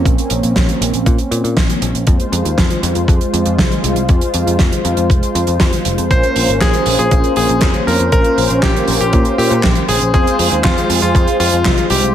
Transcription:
Already playing: A#3 C4 C#4
0.06 A#1, kick, closed hi-hat
0.18 closed hi-hat
0.30 A#1, closed hi-hat
0.43 A#1, closed hi-hat
0.56 A#1, kick, snare, closed hi-hat
0.69 closed hi-hat
0.81 A#1, closed hi-hat
0.94 A#1, closed hi-hat
1.06 A#2, kick, closed hi-hat
1.18 closed hi-hat
1.31 A#2, closed hi-hat
1.44 A#2, closed hi-hat
1.57 A#1, kick, snare, closed hi-hat
1.70 closed hi-hat
1.82 A#1, closed hi-hat
1.95 A#1, closed hi-hat
2.07 F2 G#3 F4 C5, kick, closed hi-hat
2.20 closed hi-hat
2.32 F2, closed hi-hat
2.45 D#2, closed hi-hat
2.58 F2, kick, snare, closed hi-hat
2.70 closed hi-hat
2.83 F2, closed hi-hat
2.95 F2, closed hi-hat
3.08 F2, kick, closed hi-hat
3.21 closed hi-hat
3.33 F2, closed hi-hat
3.46 F2, closed hi-hat
3.59 C2, kick, snare, closed hi-hat
3.72 closed hi-hat
3.84 C2, closed hi-hat
3.96 C2, closed hi-hat
4.09 F2, kick, closed hi-hat
4.21 closed hi-hat
4.34 F2, closed hi-hat
4.47 F2, closed hi-hat
4.59 F2, kick, snare, closed hi-hat
4.72 closed hi-hat
4.85 F2, closed hi-hat
4.97 F2, closed hi-hat
5.10 F1, kick, closed hi-hat
5.23 closed hi-hat
5.35 F2, closed hi-hat
5.47 F2, closed hi-hat
5.60 F2, kick, snare, closed hi-hat
5.73 closed hi-hat
5.85 F1, closed hi-hat
5.98 F2, closed hi-hat
6.11 A#1 A#3 C#4 F4 A#4 C5, kick, closed hi-hat
6.23 closed hi-hat
6.36 A#1, open hi-hat
6.49 G#1, closed hi-hat
6.61 A#1 G#4, kick, snare, clap, closed hi-hat
6.74 closed hi-hat
6.86 A#1, open hi-hat
6.99 A#1 G#4, closed hi-hat
7.11 A#1, kick, closed hi-hat
7.24 closed hi-hat
7.36 A#1 C#4 F4 G#4 A#4 C5, open hi-hat
7.49 A#1, closed hi-hat
7.61 F2, kick, snare, clap, closed hi-hat
7.74 closed hi-hat
7.87 F2 A#4, open hi-hat
7.99 F2, closed hi-hat
8.12 A#1 C#4 F4 A#4 C5, kick, closed hi-hat
8.24 closed hi-hat
8.38 A#1, open hi-hat
8.50 A#1, closed hi-hat
8.63 A#1 G4, kick, snare, clap, closed hi-hat
8.76 closed hi-hat
8.88 A#1, open hi-hat
9.01 A#1 G4, closed hi-hat
9.13 A#2, kick, closed hi-hat
9.25 closed hi-hat
9.38 A#2 C#4 F4 G4 A#4 C5, open hi-hat
9.51 A#2, closed hi-hat
9.63 A#1, kick, snare, clap, closed hi-hat
9.75 closed hi-hat
9.88 A#1 G#4, open hi-hat
10.01 A#1, closed hi-hat
10.14 F2 G#3 C4 F4 G#4 C5, kick, closed hi-hat
10.27 closed hi-hat
10.39 F2, open hi-hat
10.52 D#2, closed hi-hat
10.64 F2 F4, kick, snare, clap, closed hi-hat
10.78 closed hi-hat
10.90 F2, open hi-hat
11.02 F2 F4, closed hi-hat
11.15 F2, kick, closed hi-hat
11.28 closed hi-hat
11.40 F2 C4 F4 G#4 C5, open hi-hat
11.52 F2, closed hi-hat
11.65 C2, kick, snare, clap, closed hi-hat
11.77 closed hi-hat
11.90 C2 G4, open hi-hat
12.03 C2, closed hi-hat

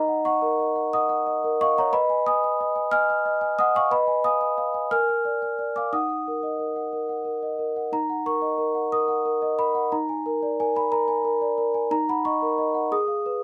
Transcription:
Already playing: D#4 D#5 A#5
0.08 F#5
0.25 D#5 F#5 C#6
0.42 A#4
0.59 D#5
0.76 F#5
0.93 D#5 F#5 D#6
1.09 F#5
1.27 D#5
1.44 A#4
1.61 D#5 F5 C#6
1.78 C#5 F#5 A#5
1.93 B4 D#5 B5
2.10 G#5
2.26 D#5 G#5 D#6
2.44 G#5
2.61 D#5
2.76 G#5
2.91 D#5 G#5 F6
3.10 G#5
3.26 D#5
3.41 G#5
3.59 D#5 F#5 D#6
3.75 F5 G#5 C#6
3.91 B4 D#5 B5
4.07 G#5
4.24 F5 G#5 D#6
4.41 G#5
4.58 F5
4.74 G#5
4.91 A#4 G#5 F6
5.09 G#5
5.25 D5
5.42 G#5
5.59 D5
5.76 F5 G#5 D6
5.93 D#4 F#5 D#6
6.09 F#5
6.28 A#4
6.43 D#5
6.59 A#4
6.76 F#5
6.93 A#4
7.09 F#5
7.25 A#4
7.43 D#5
7.59 A#4
7.76 F#5
7.92 D#4 A#5
8.10 F#5
8.26 A#4 C#6
8.42 D#5
8.58 A#4
8.75 F#5
8.92 A#4 D#6
9.08 F#5
9.26 A#4
9.42 D#5
9.58 A#4 B5
9.75 F#5
9.92 D#4 A#5
10.09 G#5
10.26 A#4
10.42 D5
10.60 A#4 G#5
10.76 G#5 B5
10.92 A#4 A#5
11.08 G#5
11.25 A#4
11.41 D5
11.58 A#4
11.74 G#5
11.91 D#4 A#5
12.09 F#5 B5
12.25 D#5 C#6
12.42 A#4
12.58 D#5
12.74 F#5
12.92 G#4 D#6
13.08 F5
13.26 B4

